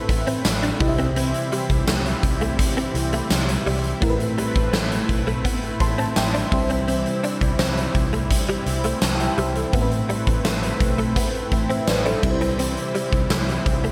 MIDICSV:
0, 0, Header, 1, 7, 480
1, 0, Start_track
1, 0, Key_signature, 0, "major"
1, 0, Tempo, 714286
1, 781, Time_signature, 4, 2, 24, 8
1, 9354, End_track
2, 0, Start_track
2, 0, Title_t, "FM electric piano"
2, 0, Program_c, 0, 5
2, 0, Control_c, 0, 64, 127
2, 0, Note_on_c, 0, 45, 74
2, 0, Note_on_c, 0, 60, 78
2, 0, Note_on_c, 0, 69, 70
2, 0, Note_on_c, 0, 71, 70
2, 0, Note_on_c, 0, 76, 86
2, 510, Note_off_c, 0, 60, 0
2, 513, Note_off_c, 0, 69, 0
2, 515, Note_off_c, 0, 71, 0
2, 518, Note_off_c, 0, 76, 0
2, 533, Note_on_c, 0, 60, 75
2, 538, Note_on_c, 0, 64, 67
2, 541, Note_on_c, 0, 48, 71
2, 543, Note_on_c, 0, 67, 66
2, 550, Control_c, 0, 64, 0
2, 550, Note_on_c, 0, 75, 63
2, 555, Note_off_c, 0, 45, 0
2, 589, Note_off_c, 0, 75, 0
2, 594, Note_on_c, 0, 76, 79
2, 684, Control_c, 0, 64, 127
2, 1234, Note_off_c, 0, 48, 0
2, 2430, Note_off_c, 0, 60, 0
2, 2433, Note_off_c, 0, 64, 0
2, 2435, Note_off_c, 0, 67, 0
2, 2460, Note_off_c, 0, 76, 0
2, 2691, Note_on_c, 0, 57, 79
2, 2697, Note_on_c, 0, 60, 72
2, 2700, Note_on_c, 0, 45, 75
2, 2703, Note_on_c, 0, 64, 69
2, 2708, Control_c, 0, 64, 0
2, 2708, Note_on_c, 0, 70, 68
2, 2748, Note_off_c, 0, 70, 0
2, 2752, Note_on_c, 0, 71, 87
2, 2829, Control_c, 0, 64, 127
2, 3394, Note_off_c, 0, 45, 0
2, 3903, Note_off_c, 0, 71, 0
2, 3903, Note_on_c, 0, 84, 69
2, 3906, Note_on_c, 0, 81, 56
2, 4015, Note_off_c, 0, 81, 0
2, 4016, Note_off_c, 0, 84, 0
2, 4023, Note_on_c, 0, 81, 72
2, 4136, Note_off_c, 0, 81, 0
2, 4143, Note_on_c, 0, 79, 72
2, 4147, Note_on_c, 0, 76, 63
2, 4254, Note_off_c, 0, 76, 0
2, 4256, Note_off_c, 0, 79, 0
2, 4262, Note_on_c, 0, 76, 69
2, 4267, Note_on_c, 0, 72, 57
2, 4349, Note_off_c, 0, 57, 0
2, 4352, Note_off_c, 0, 60, 0
2, 4355, Note_off_c, 0, 64, 0
2, 4376, Note_on_c, 0, 55, 74
2, 4383, Note_on_c, 0, 60, 67
2, 4384, Note_off_c, 0, 72, 0
2, 4385, Note_on_c, 0, 48, 71
2, 4387, Note_on_c, 0, 64, 65
2, 4390, Control_c, 0, 64, 0
2, 4392, Note_on_c, 0, 72, 78
2, 4489, Note_off_c, 0, 76, 0
2, 4506, Control_c, 0, 64, 127
2, 5076, Note_off_c, 0, 48, 0
2, 6040, Note_off_c, 0, 72, 0
2, 6060, Note_on_c, 0, 81, 68
2, 6174, Note_off_c, 0, 81, 0
2, 6182, Note_on_c, 0, 79, 71
2, 6186, Note_on_c, 0, 76, 60
2, 6271, Note_off_c, 0, 55, 0
2, 6275, Note_off_c, 0, 60, 0
2, 6277, Note_off_c, 0, 64, 0
2, 6294, Note_off_c, 0, 76, 0
2, 6295, Note_off_c, 0, 79, 0
2, 6302, Note_on_c, 0, 76, 66
2, 6307, Note_on_c, 0, 72, 61
2, 6416, Note_off_c, 0, 72, 0
2, 6416, Note_off_c, 0, 76, 0
2, 6424, Note_on_c, 0, 72, 63
2, 6429, Note_on_c, 0, 69, 53
2, 6535, Note_on_c, 0, 57, 76
2, 6540, Note_on_c, 0, 60, 74
2, 6544, Note_off_c, 0, 69, 0
2, 6544, Note_on_c, 0, 45, 70
2, 6547, Note_on_c, 0, 64, 66
2, 6550, Control_c, 0, 64, 0
2, 6552, Note_on_c, 0, 69, 66
2, 6590, Note_off_c, 0, 69, 0
2, 6596, Note_on_c, 0, 71, 86
2, 6648, Control_c, 0, 64, 127
2, 6651, Note_off_c, 0, 72, 0
2, 7235, Note_off_c, 0, 45, 0
2, 7744, Note_on_c, 0, 79, 69
2, 7745, Note_off_c, 0, 71, 0
2, 7748, Note_on_c, 0, 76, 54
2, 7855, Note_off_c, 0, 76, 0
2, 7857, Note_off_c, 0, 79, 0
2, 7863, Note_on_c, 0, 76, 76
2, 7867, Note_on_c, 0, 72, 62
2, 7976, Note_off_c, 0, 76, 0
2, 7978, Note_off_c, 0, 72, 0
2, 7981, Note_on_c, 0, 74, 71
2, 7986, Note_on_c, 0, 71, 65
2, 8095, Note_off_c, 0, 74, 0
2, 8097, Note_off_c, 0, 71, 0
2, 8100, Note_on_c, 0, 72, 66
2, 8103, Note_on_c, 0, 69, 59
2, 8191, Note_off_c, 0, 57, 0
2, 8194, Note_off_c, 0, 60, 0
2, 8197, Note_off_c, 0, 64, 0
2, 8211, Note_on_c, 0, 55, 75
2, 8218, Note_on_c, 0, 60, 66
2, 8220, Note_on_c, 0, 48, 71
2, 8222, Note_on_c, 0, 64, 72
2, 8227, Note_on_c, 0, 71, 62
2, 8230, Control_c, 0, 64, 0
2, 8263, Note_off_c, 0, 72, 0
2, 8268, Note_off_c, 0, 71, 0
2, 8272, Note_on_c, 0, 72, 82
2, 8330, Note_off_c, 0, 69, 0
2, 8347, Control_c, 0, 64, 127
2, 8914, Note_off_c, 0, 48, 0
2, 9354, Note_off_c, 0, 55, 0
2, 9354, Note_off_c, 0, 60, 0
2, 9354, Note_off_c, 0, 64, 0
2, 9354, Note_off_c, 0, 72, 0
2, 9354, End_track
3, 0, Start_track
3, 0, Title_t, "Clean electric guitar"
3, 0, Program_c, 1, 27
3, 180, Note_on_c, 1, 60, 80
3, 273, Note_off_c, 1, 60, 0
3, 421, Note_on_c, 1, 62, 72
3, 514, Note_off_c, 1, 62, 0
3, 663, Note_on_c, 1, 60, 73
3, 755, Note_off_c, 1, 60, 0
3, 782, Note_on_c, 1, 60, 80
3, 874, Note_off_c, 1, 60, 0
3, 1022, Note_on_c, 1, 55, 67
3, 1115, Note_off_c, 1, 55, 0
3, 1263, Note_on_c, 1, 57, 87
3, 1355, Note_off_c, 1, 57, 0
3, 1622, Note_on_c, 1, 57, 76
3, 1714, Note_off_c, 1, 57, 0
3, 1862, Note_on_c, 1, 60, 85
3, 1954, Note_off_c, 1, 60, 0
3, 2104, Note_on_c, 1, 57, 71
3, 2195, Note_off_c, 1, 57, 0
3, 2462, Note_on_c, 1, 55, 80
3, 2555, Note_off_c, 1, 55, 0
3, 2702, Note_on_c, 1, 59, 79
3, 2794, Note_off_c, 1, 59, 0
3, 2942, Note_on_c, 1, 55, 77
3, 3034, Note_off_c, 1, 55, 0
3, 3179, Note_on_c, 1, 57, 80
3, 3273, Note_off_c, 1, 57, 0
3, 3542, Note_on_c, 1, 57, 81
3, 3634, Note_off_c, 1, 57, 0
3, 3659, Note_on_c, 1, 59, 83
3, 3753, Note_off_c, 1, 59, 0
3, 4020, Note_on_c, 1, 60, 84
3, 4113, Note_off_c, 1, 60, 0
3, 4260, Note_on_c, 1, 62, 70
3, 4353, Note_off_c, 1, 62, 0
3, 4501, Note_on_c, 1, 60, 72
3, 4594, Note_off_c, 1, 60, 0
3, 4621, Note_on_c, 1, 60, 78
3, 4714, Note_off_c, 1, 60, 0
3, 4862, Note_on_c, 1, 62, 68
3, 4954, Note_off_c, 1, 62, 0
3, 5101, Note_on_c, 1, 60, 90
3, 5194, Note_off_c, 1, 60, 0
3, 5463, Note_on_c, 1, 57, 73
3, 5555, Note_off_c, 1, 57, 0
3, 5703, Note_on_c, 1, 55, 82
3, 5795, Note_off_c, 1, 55, 0
3, 5943, Note_on_c, 1, 57, 75
3, 6035, Note_off_c, 1, 57, 0
3, 6302, Note_on_c, 1, 55, 77
3, 6395, Note_off_c, 1, 55, 0
3, 6542, Note_on_c, 1, 59, 75
3, 6635, Note_off_c, 1, 59, 0
3, 6782, Note_on_c, 1, 55, 75
3, 6874, Note_off_c, 1, 55, 0
3, 7021, Note_on_c, 1, 57, 82
3, 7114, Note_off_c, 1, 57, 0
3, 7381, Note_on_c, 1, 57, 82
3, 7474, Note_off_c, 1, 57, 0
3, 7502, Note_on_c, 1, 59, 83
3, 7594, Note_off_c, 1, 59, 0
3, 7859, Note_on_c, 1, 60, 82
3, 7953, Note_off_c, 1, 60, 0
3, 8101, Note_on_c, 1, 62, 75
3, 8194, Note_off_c, 1, 62, 0
3, 8341, Note_on_c, 1, 60, 76
3, 8434, Note_off_c, 1, 60, 0
3, 8460, Note_on_c, 1, 60, 82
3, 8553, Note_off_c, 1, 60, 0
3, 8700, Note_on_c, 1, 55, 71
3, 8793, Note_off_c, 1, 55, 0
3, 8941, Note_on_c, 1, 57, 85
3, 9034, Note_off_c, 1, 57, 0
3, 9300, Note_on_c, 1, 57, 78
3, 9354, Note_off_c, 1, 57, 0
3, 9354, End_track
4, 0, Start_track
4, 0, Title_t, "Analog synth pad"
4, 0, Program_c, 2, 89
4, 0, Note_on_c, 2, 57, 69
4, 0, Note_on_c, 2, 60, 80
4, 0, Note_on_c, 2, 64, 90
4, 0, Note_on_c, 2, 71, 70
4, 524, Note_off_c, 2, 64, 0
4, 525, Note_off_c, 2, 57, 0
4, 525, Note_off_c, 2, 71, 0
4, 539, Note_on_c, 2, 52, 66
4, 540, Note_on_c, 2, 55, 71
4, 542, Note_on_c, 2, 64, 82
4, 2674, Note_off_c, 2, 60, 0
4, 2678, Note_off_c, 2, 52, 0
4, 2679, Note_off_c, 2, 55, 0
4, 2700, Note_on_c, 2, 57, 74
4, 2701, Note_on_c, 2, 60, 77
4, 2702, Note_on_c, 2, 71, 73
4, 4364, Note_off_c, 2, 57, 0
4, 4365, Note_off_c, 2, 71, 0
4, 4383, Note_on_c, 2, 52, 66
4, 4384, Note_on_c, 2, 55, 69
4, 6520, Note_off_c, 2, 52, 0
4, 6521, Note_off_c, 2, 55, 0
4, 6541, Note_on_c, 2, 57, 74
4, 6541, Note_on_c, 2, 71, 72
4, 8204, Note_off_c, 2, 57, 0
4, 8204, Note_off_c, 2, 71, 0
4, 8220, Note_on_c, 2, 52, 67
4, 8222, Note_on_c, 2, 55, 69
4, 9354, Note_off_c, 2, 52, 0
4, 9354, Note_off_c, 2, 55, 0
4, 9354, Note_off_c, 2, 60, 0
4, 9354, Note_off_c, 2, 64, 0
4, 9354, End_track
5, 0, Start_track
5, 0, Title_t, "Fingered electric bass"
5, 0, Program_c, 3, 33
5, 61, Note_on_c, 3, 33, 102
5, 234, Note_off_c, 3, 33, 0
5, 300, Note_on_c, 3, 33, 102
5, 473, Note_off_c, 3, 33, 0
5, 540, Note_on_c, 3, 36, 93
5, 886, Note_off_c, 3, 36, 0
5, 1141, Note_on_c, 3, 36, 98
5, 1227, Note_off_c, 3, 36, 0
5, 1258, Note_on_c, 3, 36, 107
5, 1432, Note_off_c, 3, 36, 0
5, 1501, Note_on_c, 3, 36, 87
5, 1760, Note_off_c, 3, 36, 0
5, 1978, Note_on_c, 3, 36, 93
5, 2152, Note_off_c, 3, 36, 0
5, 2218, Note_on_c, 3, 36, 105
5, 2392, Note_off_c, 3, 36, 0
5, 2458, Note_on_c, 3, 36, 101
5, 2632, Note_off_c, 3, 36, 0
5, 2701, Note_on_c, 3, 33, 111
5, 2874, Note_off_c, 3, 33, 0
5, 3062, Note_on_c, 3, 33, 98
5, 3148, Note_off_c, 3, 33, 0
5, 3179, Note_on_c, 3, 33, 105
5, 3352, Note_off_c, 3, 33, 0
5, 3422, Note_on_c, 3, 35, 99
5, 3681, Note_off_c, 3, 35, 0
5, 3899, Note_on_c, 3, 33, 105
5, 4072, Note_off_c, 3, 33, 0
5, 4143, Note_on_c, 3, 33, 101
5, 4315, Note_off_c, 3, 33, 0
5, 4381, Note_on_c, 3, 36, 91
5, 4726, Note_off_c, 3, 36, 0
5, 4982, Note_on_c, 3, 36, 97
5, 5068, Note_off_c, 3, 36, 0
5, 5101, Note_on_c, 3, 36, 104
5, 5274, Note_off_c, 3, 36, 0
5, 5341, Note_on_c, 3, 36, 97
5, 5600, Note_off_c, 3, 36, 0
5, 5820, Note_on_c, 3, 36, 87
5, 5993, Note_off_c, 3, 36, 0
5, 6061, Note_on_c, 3, 36, 98
5, 6234, Note_off_c, 3, 36, 0
5, 6302, Note_on_c, 3, 36, 97
5, 6474, Note_off_c, 3, 36, 0
5, 6542, Note_on_c, 3, 33, 100
5, 6714, Note_off_c, 3, 33, 0
5, 6903, Note_on_c, 3, 33, 99
5, 6988, Note_off_c, 3, 33, 0
5, 7023, Note_on_c, 3, 33, 104
5, 7195, Note_off_c, 3, 33, 0
5, 7261, Note_on_c, 3, 35, 96
5, 7520, Note_off_c, 3, 35, 0
5, 7740, Note_on_c, 3, 33, 103
5, 7913, Note_off_c, 3, 33, 0
5, 7981, Note_on_c, 3, 33, 103
5, 8153, Note_off_c, 3, 33, 0
5, 8221, Note_on_c, 3, 36, 99
5, 8566, Note_off_c, 3, 36, 0
5, 8821, Note_on_c, 3, 36, 93
5, 8907, Note_off_c, 3, 36, 0
5, 8939, Note_on_c, 3, 36, 111
5, 9113, Note_off_c, 3, 36, 0
5, 9180, Note_on_c, 3, 36, 97
5, 9354, Note_off_c, 3, 36, 0
5, 9354, End_track
6, 0, Start_track
6, 0, Title_t, "Muted clean electric guitar strokes"
6, 64, Note_on_c, 9, 29, 43
6, 131, Note_off_c, 9, 29, 0
6, 541, Note_on_c, 9, 29, 42
6, 608, Note_off_c, 9, 29, 0
6, 1143, Note_on_c, 9, 29, 47
6, 1210, Note_off_c, 9, 29, 0
6, 1383, Note_on_c, 9, 29, 44
6, 1450, Note_off_c, 9, 29, 0
6, 1983, Note_on_c, 9, 29, 45
6, 2051, Note_off_c, 9, 29, 0
6, 3062, Note_on_c, 9, 29, 46
6, 3129, Note_off_c, 9, 29, 0
6, 3300, Note_on_c, 9, 29, 45
6, 3367, Note_off_c, 9, 29, 0
6, 3902, Note_on_c, 9, 29, 44
6, 3969, Note_off_c, 9, 29, 0
6, 4382, Note_on_c, 9, 29, 46
6, 4449, Note_off_c, 9, 29, 0
6, 4983, Note_on_c, 9, 29, 46
6, 5050, Note_off_c, 9, 29, 0
6, 5222, Note_on_c, 9, 29, 44
6, 5289, Note_off_c, 9, 29, 0
6, 5823, Note_on_c, 9, 29, 44
6, 5890, Note_off_c, 9, 29, 0
6, 6902, Note_on_c, 9, 29, 44
6, 6970, Note_off_c, 9, 29, 0
6, 7145, Note_on_c, 9, 29, 41
6, 7212, Note_off_c, 9, 29, 0
6, 7740, Note_on_c, 9, 29, 47
6, 7807, Note_off_c, 9, 29, 0
6, 8221, Note_on_c, 9, 29, 45
6, 8288, Note_off_c, 9, 29, 0
6, 8821, Note_on_c, 9, 29, 46
6, 8888, Note_off_c, 9, 29, 0
6, 9062, Note_on_c, 9, 29, 46
6, 9129, Note_off_c, 9, 29, 0
6, 9354, End_track
7, 0, Start_track
7, 0, Title_t, "Drums"
7, 61, Note_on_c, 9, 36, 98
7, 63, Note_on_c, 9, 42, 86
7, 128, Note_off_c, 9, 36, 0
7, 130, Note_off_c, 9, 42, 0
7, 182, Note_on_c, 9, 42, 60
7, 249, Note_off_c, 9, 42, 0
7, 301, Note_on_c, 9, 42, 103
7, 301, Note_on_c, 9, 54, 71
7, 302, Note_on_c, 9, 38, 101
7, 368, Note_off_c, 9, 42, 0
7, 368, Note_off_c, 9, 54, 0
7, 369, Note_off_c, 9, 38, 0
7, 422, Note_on_c, 9, 42, 61
7, 489, Note_off_c, 9, 42, 0
7, 540, Note_on_c, 9, 46, 63
7, 541, Note_on_c, 9, 36, 111
7, 607, Note_off_c, 9, 46, 0
7, 608, Note_off_c, 9, 36, 0
7, 659, Note_on_c, 9, 42, 53
7, 726, Note_off_c, 9, 42, 0
7, 780, Note_on_c, 9, 42, 77
7, 847, Note_off_c, 9, 42, 0
7, 901, Note_on_c, 9, 42, 55
7, 968, Note_off_c, 9, 42, 0
7, 1022, Note_on_c, 9, 42, 66
7, 1089, Note_off_c, 9, 42, 0
7, 1140, Note_on_c, 9, 42, 54
7, 1141, Note_on_c, 9, 36, 83
7, 1207, Note_off_c, 9, 42, 0
7, 1209, Note_off_c, 9, 36, 0
7, 1260, Note_on_c, 9, 54, 68
7, 1261, Note_on_c, 9, 38, 108
7, 1261, Note_on_c, 9, 42, 82
7, 1327, Note_off_c, 9, 54, 0
7, 1328, Note_off_c, 9, 38, 0
7, 1328, Note_off_c, 9, 42, 0
7, 1380, Note_on_c, 9, 42, 59
7, 1448, Note_off_c, 9, 42, 0
7, 1500, Note_on_c, 9, 42, 68
7, 1501, Note_on_c, 9, 36, 90
7, 1568, Note_off_c, 9, 36, 0
7, 1568, Note_off_c, 9, 42, 0
7, 1619, Note_on_c, 9, 42, 44
7, 1686, Note_off_c, 9, 42, 0
7, 1741, Note_on_c, 9, 36, 91
7, 1741, Note_on_c, 9, 42, 108
7, 1808, Note_off_c, 9, 36, 0
7, 1808, Note_off_c, 9, 42, 0
7, 1862, Note_on_c, 9, 42, 46
7, 1929, Note_off_c, 9, 42, 0
7, 1981, Note_on_c, 9, 42, 83
7, 2048, Note_off_c, 9, 42, 0
7, 2099, Note_on_c, 9, 42, 58
7, 2167, Note_off_c, 9, 42, 0
7, 2220, Note_on_c, 9, 42, 104
7, 2220, Note_on_c, 9, 54, 72
7, 2221, Note_on_c, 9, 38, 100
7, 2287, Note_off_c, 9, 54, 0
7, 2288, Note_off_c, 9, 38, 0
7, 2288, Note_off_c, 9, 42, 0
7, 2343, Note_on_c, 9, 42, 60
7, 2410, Note_off_c, 9, 42, 0
7, 2461, Note_on_c, 9, 46, 64
7, 2528, Note_off_c, 9, 46, 0
7, 2580, Note_on_c, 9, 42, 58
7, 2647, Note_off_c, 9, 42, 0
7, 2700, Note_on_c, 9, 42, 80
7, 2701, Note_on_c, 9, 36, 117
7, 2767, Note_off_c, 9, 42, 0
7, 2768, Note_off_c, 9, 36, 0
7, 2822, Note_on_c, 9, 42, 52
7, 2889, Note_off_c, 9, 42, 0
7, 2943, Note_on_c, 9, 42, 66
7, 3011, Note_off_c, 9, 42, 0
7, 3061, Note_on_c, 9, 42, 50
7, 3062, Note_on_c, 9, 36, 90
7, 3129, Note_off_c, 9, 36, 0
7, 3129, Note_off_c, 9, 42, 0
7, 3181, Note_on_c, 9, 54, 60
7, 3182, Note_on_c, 9, 38, 109
7, 3182, Note_on_c, 9, 42, 83
7, 3248, Note_off_c, 9, 54, 0
7, 3249, Note_off_c, 9, 38, 0
7, 3249, Note_off_c, 9, 42, 0
7, 3303, Note_on_c, 9, 42, 58
7, 3370, Note_off_c, 9, 42, 0
7, 3421, Note_on_c, 9, 42, 73
7, 3422, Note_on_c, 9, 36, 88
7, 3488, Note_off_c, 9, 42, 0
7, 3489, Note_off_c, 9, 36, 0
7, 3542, Note_on_c, 9, 42, 44
7, 3609, Note_off_c, 9, 42, 0
7, 3662, Note_on_c, 9, 36, 95
7, 3662, Note_on_c, 9, 42, 109
7, 3729, Note_off_c, 9, 36, 0
7, 3730, Note_off_c, 9, 42, 0
7, 3782, Note_on_c, 9, 42, 46
7, 3850, Note_off_c, 9, 42, 0
7, 3900, Note_on_c, 9, 36, 98
7, 3900, Note_on_c, 9, 42, 82
7, 3967, Note_off_c, 9, 36, 0
7, 3967, Note_off_c, 9, 42, 0
7, 4019, Note_on_c, 9, 42, 56
7, 4087, Note_off_c, 9, 42, 0
7, 4140, Note_on_c, 9, 54, 71
7, 4141, Note_on_c, 9, 38, 99
7, 4141, Note_on_c, 9, 42, 102
7, 4207, Note_off_c, 9, 54, 0
7, 4208, Note_off_c, 9, 42, 0
7, 4209, Note_off_c, 9, 38, 0
7, 4262, Note_on_c, 9, 42, 60
7, 4329, Note_off_c, 9, 42, 0
7, 4381, Note_on_c, 9, 36, 111
7, 4381, Note_on_c, 9, 46, 64
7, 4448, Note_off_c, 9, 46, 0
7, 4449, Note_off_c, 9, 36, 0
7, 4500, Note_on_c, 9, 42, 57
7, 4567, Note_off_c, 9, 42, 0
7, 4622, Note_on_c, 9, 42, 81
7, 4690, Note_off_c, 9, 42, 0
7, 4742, Note_on_c, 9, 42, 51
7, 4809, Note_off_c, 9, 42, 0
7, 4862, Note_on_c, 9, 42, 67
7, 4929, Note_off_c, 9, 42, 0
7, 4980, Note_on_c, 9, 42, 53
7, 4982, Note_on_c, 9, 36, 82
7, 5048, Note_off_c, 9, 42, 0
7, 5049, Note_off_c, 9, 36, 0
7, 5100, Note_on_c, 9, 54, 64
7, 5102, Note_on_c, 9, 38, 111
7, 5102, Note_on_c, 9, 42, 84
7, 5167, Note_off_c, 9, 54, 0
7, 5169, Note_off_c, 9, 38, 0
7, 5169, Note_off_c, 9, 42, 0
7, 5222, Note_on_c, 9, 42, 57
7, 5290, Note_off_c, 9, 42, 0
7, 5341, Note_on_c, 9, 42, 68
7, 5342, Note_on_c, 9, 36, 85
7, 5408, Note_off_c, 9, 42, 0
7, 5409, Note_off_c, 9, 36, 0
7, 5461, Note_on_c, 9, 42, 44
7, 5528, Note_off_c, 9, 42, 0
7, 5581, Note_on_c, 9, 36, 93
7, 5582, Note_on_c, 9, 42, 109
7, 5648, Note_off_c, 9, 36, 0
7, 5649, Note_off_c, 9, 42, 0
7, 5701, Note_on_c, 9, 42, 44
7, 5768, Note_off_c, 9, 42, 0
7, 5821, Note_on_c, 9, 42, 79
7, 5888, Note_off_c, 9, 42, 0
7, 5938, Note_on_c, 9, 42, 59
7, 6006, Note_off_c, 9, 42, 0
7, 6059, Note_on_c, 9, 54, 70
7, 6060, Note_on_c, 9, 38, 102
7, 6060, Note_on_c, 9, 42, 105
7, 6126, Note_off_c, 9, 54, 0
7, 6127, Note_off_c, 9, 42, 0
7, 6128, Note_off_c, 9, 38, 0
7, 6180, Note_on_c, 9, 42, 63
7, 6247, Note_off_c, 9, 42, 0
7, 6301, Note_on_c, 9, 42, 66
7, 6368, Note_off_c, 9, 42, 0
7, 6419, Note_on_c, 9, 42, 57
7, 6486, Note_off_c, 9, 42, 0
7, 6541, Note_on_c, 9, 36, 114
7, 6541, Note_on_c, 9, 42, 85
7, 6608, Note_off_c, 9, 36, 0
7, 6608, Note_off_c, 9, 42, 0
7, 6661, Note_on_c, 9, 42, 51
7, 6728, Note_off_c, 9, 42, 0
7, 6783, Note_on_c, 9, 42, 67
7, 6850, Note_off_c, 9, 42, 0
7, 6902, Note_on_c, 9, 36, 85
7, 6903, Note_on_c, 9, 42, 53
7, 6970, Note_off_c, 9, 36, 0
7, 6970, Note_off_c, 9, 42, 0
7, 7021, Note_on_c, 9, 54, 66
7, 7022, Note_on_c, 9, 38, 108
7, 7022, Note_on_c, 9, 42, 79
7, 7088, Note_off_c, 9, 54, 0
7, 7089, Note_off_c, 9, 38, 0
7, 7089, Note_off_c, 9, 42, 0
7, 7142, Note_on_c, 9, 42, 59
7, 7209, Note_off_c, 9, 42, 0
7, 7259, Note_on_c, 9, 42, 66
7, 7261, Note_on_c, 9, 36, 90
7, 7326, Note_off_c, 9, 42, 0
7, 7328, Note_off_c, 9, 36, 0
7, 7379, Note_on_c, 9, 42, 47
7, 7446, Note_off_c, 9, 42, 0
7, 7501, Note_on_c, 9, 36, 93
7, 7501, Note_on_c, 9, 42, 102
7, 7568, Note_off_c, 9, 36, 0
7, 7568, Note_off_c, 9, 42, 0
7, 7621, Note_on_c, 9, 42, 45
7, 7689, Note_off_c, 9, 42, 0
7, 7740, Note_on_c, 9, 36, 99
7, 7742, Note_on_c, 9, 42, 84
7, 7807, Note_off_c, 9, 36, 0
7, 7810, Note_off_c, 9, 42, 0
7, 7861, Note_on_c, 9, 42, 58
7, 7928, Note_off_c, 9, 42, 0
7, 7980, Note_on_c, 9, 42, 101
7, 7980, Note_on_c, 9, 54, 71
7, 7981, Note_on_c, 9, 38, 107
7, 8047, Note_off_c, 9, 42, 0
7, 8047, Note_off_c, 9, 54, 0
7, 8048, Note_off_c, 9, 38, 0
7, 8101, Note_on_c, 9, 42, 62
7, 8168, Note_off_c, 9, 42, 0
7, 8220, Note_on_c, 9, 36, 109
7, 8220, Note_on_c, 9, 49, 78
7, 8287, Note_off_c, 9, 49, 0
7, 8288, Note_off_c, 9, 36, 0
7, 8337, Note_on_c, 9, 42, 55
7, 8405, Note_off_c, 9, 42, 0
7, 8460, Note_on_c, 9, 42, 87
7, 8527, Note_off_c, 9, 42, 0
7, 8580, Note_on_c, 9, 42, 55
7, 8647, Note_off_c, 9, 42, 0
7, 8701, Note_on_c, 9, 42, 69
7, 8768, Note_off_c, 9, 42, 0
7, 8819, Note_on_c, 9, 42, 52
7, 8820, Note_on_c, 9, 36, 87
7, 8887, Note_off_c, 9, 42, 0
7, 8888, Note_off_c, 9, 36, 0
7, 8938, Note_on_c, 9, 54, 64
7, 8940, Note_on_c, 9, 38, 108
7, 8940, Note_on_c, 9, 42, 78
7, 9005, Note_off_c, 9, 54, 0
7, 9007, Note_off_c, 9, 38, 0
7, 9007, Note_off_c, 9, 42, 0
7, 9060, Note_on_c, 9, 42, 57
7, 9127, Note_off_c, 9, 42, 0
7, 9180, Note_on_c, 9, 36, 89
7, 9180, Note_on_c, 9, 42, 66
7, 9247, Note_off_c, 9, 36, 0
7, 9247, Note_off_c, 9, 42, 0
7, 9300, Note_on_c, 9, 42, 46
7, 9354, Note_off_c, 9, 42, 0
7, 9354, End_track
0, 0, End_of_file